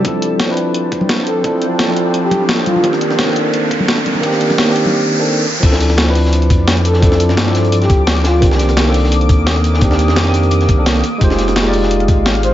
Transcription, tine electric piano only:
X:1
M:4/4
L:1/16
Q:"Swing 16ths" 1/4=172
K:C
V:1 name="Tine electric piano"
[F,CDEA]4- [F,CDEA] [F,CDEB]8- [F,CDEB]3 | [F,CDEA]4- [F,CDEA] [F,CDEA]8- [F,CDEA]3 | [_E,_B,CDG]4- [E,B,CDG] [E,B,CDA]8- [E,B,CDA]3 | [_E,_B,CDG]4- [E,B,CDG] [E,B,CDG]6 [E,B,CDA]3 z2 |
[F,CDEA]4- [F,CDEA] [F,CDEB]8- [F,CDEB]3 | [F,CDEA]4- [F,CDEA] [F,CDEA]8- [F,CDEA]3 | [_E,_B,CDG]4- [E,B,CDG] [E,B,CDA]8- [E,B,CDA]3 | [_E,_B,CDG]4- [E,B,CDG] [E,B,CDG]6 [E,B,CDA]3 z2 |
[_A,_EFGc]4- [A,EFGc] [A,EFGd]8- [A,EFGd]3 |]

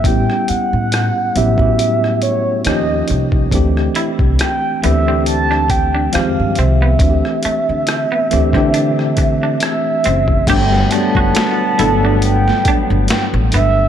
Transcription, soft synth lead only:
X:1
M:4/4
L:1/16
Q:"Swing 16ths" 1/4=69
K:G
V:1 name="Soft synth lead"
g2 f4 e4 ^c2 ^d3 z | z4 g2 e2 a2 g2 =f2 e2- | e12 e4 | g2 a2 a4 g4 g2 e2 |]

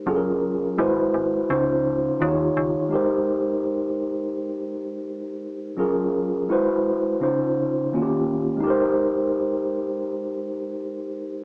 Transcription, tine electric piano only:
X:1
M:4/4
L:1/8
Q:"Swing 16ths" 1/4=84
K:Ab
V:1 name="Tine electric piano"
[_G,DFA=AB]2 [_A,=E_G=Bc]2 [D,D_EFc]2 [E,EFG=Gd]2 | [A,EGBc]8 | [_G,DFAB]2 [A,=E_G=Bc]2 [D,D_EFc]2 [E,_B,DFG=G]2 | [A,EGBc]8 |]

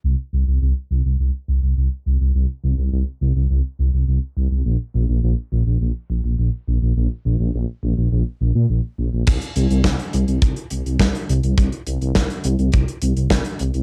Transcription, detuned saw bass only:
X:1
M:4/4
L:1/16
Q:1/4=104
K:Bbmix
V:1 name="Detuned saw bass" clef=bass
C,, z C,, C,, C,, z C,, C,, C,, z C,, C,, C,, z C,, C,, | C,, z C,, C,, C,, z C,, C,, C,, z C,, C,, C,, z C,, C,, | B,,, z B,,, B,,, B,,, z B,,, B,,, B,,, z B,,, B,,, B,,, z B,,, B,,, | B,,, z B,,, B,,, B,,, z B,,, B,,, B,,, z B,,, B,, B,,, z B,,, B,,, |
C,, z C,, C,, C,, z C,, C,, C,, z C,, C,, C,, z C,, C,, | C,, z C,, C,, C,, z C,, C,, C,, z C,, C,, C,, z C,, C,, |]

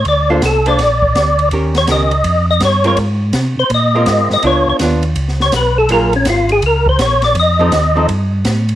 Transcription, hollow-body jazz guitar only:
X:1
M:4/4
L:1/8
Q:"Swing" 1/4=164
K:Bbmix
V:1 name="Hollow-body jazz guitar"
z [B,D=Ac] z [B,DAc] z4 | [E,_DGB] z [E,DGB] z4 [A,CFB] | z4 z [A,CFB]3 | [_CDF]2 [CDF] z4 z |
[_G,B,FA] z6 z | z [F,CE=A] z [F,CEA] z4 |]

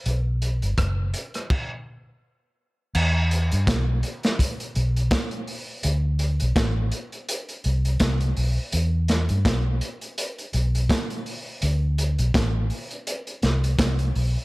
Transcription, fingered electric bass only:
X:1
M:4/4
L:1/16
Q:"Swing 16ths" 1/4=83
K:Em
V:1 name="Fingered electric bass" clef=bass
B,,,3 G,,, F,,,2 z8 z2 | E,,3 G,, B,,,2 z4 B,,,2 z4 | D,,3 B,,, A,,,2 z4 C,,2 C,,2 B,,, z | E,,3 G,, B,,,2 z4 B,,,2 z4 |
D,,3 B,,, A,,,2 z4 C,,2 C,,2 B,,, z |]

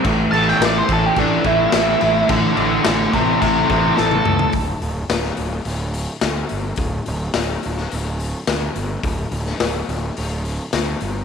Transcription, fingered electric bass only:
X:1
M:4/4
L:1/8
Q:1/4=107
K:Aphr
V:1 name="Fingered electric bass" clef=bass
A,,, A,,, A,,, A,,, A,,, A,,, A,,, A,,, | A,,, A,,, A,,, A,,, A,,, A,,, A,,, ^C,, | D,,, D,,, D,,, D,,, D,,,2 D,, G,,, | D,,, D,,, D,,, D,,, D,,,2 D,, G,,, |
D,,, D,,, D,,, D,,, D,,,2 D,, G,,, |]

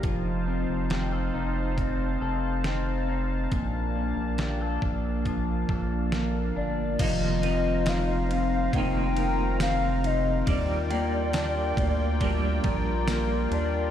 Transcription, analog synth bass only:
X:1
M:4/4
L:1/16
Q:1/4=69
K:Fmix
V:1 name="Analog synth bass" clef=bass
F,,,3 F,,,3 F,,,4 F,,,6 | B,,,3 B,,,3 B,,,4 B,,,4 G,,,2 | F,,,8 F,,,8 | E,,6 D,,4 B,,,4 E,,2 |]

